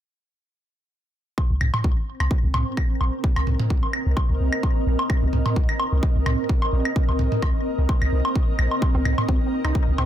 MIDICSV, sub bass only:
0, 0, Header, 1, 2, 480
1, 0, Start_track
1, 0, Key_signature, -3, "minor"
1, 0, Tempo, 465116
1, 1423, Time_signature, 4, 2, 24, 8
1, 10378, End_track
2, 0, Start_track
2, 0, Title_t, "Sub bass"
2, 0, Program_c, 0, 38
2, 1552, Note_on_c, 0, 36, 95
2, 1633, Note_off_c, 0, 36, 0
2, 1661, Note_on_c, 0, 36, 100
2, 1757, Note_off_c, 0, 36, 0
2, 1902, Note_on_c, 0, 36, 92
2, 1998, Note_off_c, 0, 36, 0
2, 2271, Note_on_c, 0, 36, 90
2, 2353, Note_off_c, 0, 36, 0
2, 2512, Note_on_c, 0, 36, 93
2, 2593, Note_off_c, 0, 36, 0
2, 2622, Note_on_c, 0, 36, 78
2, 2718, Note_off_c, 0, 36, 0
2, 3102, Note_on_c, 0, 34, 82
2, 3198, Note_off_c, 0, 34, 0
2, 3472, Note_on_c, 0, 36, 96
2, 3553, Note_off_c, 0, 36, 0
2, 3581, Note_on_c, 0, 36, 99
2, 3678, Note_off_c, 0, 36, 0
2, 3822, Note_on_c, 0, 36, 94
2, 3918, Note_off_c, 0, 36, 0
2, 4192, Note_on_c, 0, 36, 91
2, 4273, Note_off_c, 0, 36, 0
2, 4432, Note_on_c, 0, 36, 95
2, 4513, Note_off_c, 0, 36, 0
2, 4541, Note_on_c, 0, 36, 78
2, 4638, Note_off_c, 0, 36, 0
2, 5021, Note_on_c, 0, 34, 85
2, 5118, Note_off_c, 0, 34, 0
2, 5392, Note_on_c, 0, 36, 95
2, 5473, Note_off_c, 0, 36, 0
2, 5502, Note_on_c, 0, 36, 98
2, 5598, Note_off_c, 0, 36, 0
2, 5741, Note_on_c, 0, 36, 91
2, 5838, Note_off_c, 0, 36, 0
2, 6112, Note_on_c, 0, 36, 92
2, 6193, Note_off_c, 0, 36, 0
2, 6352, Note_on_c, 0, 36, 92
2, 6433, Note_off_c, 0, 36, 0
2, 6461, Note_on_c, 0, 36, 79
2, 6558, Note_off_c, 0, 36, 0
2, 6941, Note_on_c, 0, 34, 87
2, 7038, Note_off_c, 0, 34, 0
2, 7312, Note_on_c, 0, 36, 97
2, 7393, Note_off_c, 0, 36, 0
2, 7421, Note_on_c, 0, 36, 103
2, 7518, Note_off_c, 0, 36, 0
2, 7662, Note_on_c, 0, 36, 96
2, 7758, Note_off_c, 0, 36, 0
2, 8032, Note_on_c, 0, 36, 90
2, 8113, Note_off_c, 0, 36, 0
2, 8272, Note_on_c, 0, 36, 93
2, 8353, Note_off_c, 0, 36, 0
2, 8381, Note_on_c, 0, 36, 80
2, 8478, Note_off_c, 0, 36, 0
2, 8863, Note_on_c, 0, 34, 93
2, 8958, Note_off_c, 0, 34, 0
2, 9232, Note_on_c, 0, 36, 94
2, 9313, Note_off_c, 0, 36, 0
2, 9342, Note_on_c, 0, 36, 103
2, 9438, Note_off_c, 0, 36, 0
2, 9582, Note_on_c, 0, 36, 95
2, 9678, Note_off_c, 0, 36, 0
2, 9953, Note_on_c, 0, 36, 92
2, 10034, Note_off_c, 0, 36, 0
2, 10194, Note_on_c, 0, 36, 93
2, 10274, Note_off_c, 0, 36, 0
2, 10303, Note_on_c, 0, 36, 79
2, 10378, Note_off_c, 0, 36, 0
2, 10378, End_track
0, 0, End_of_file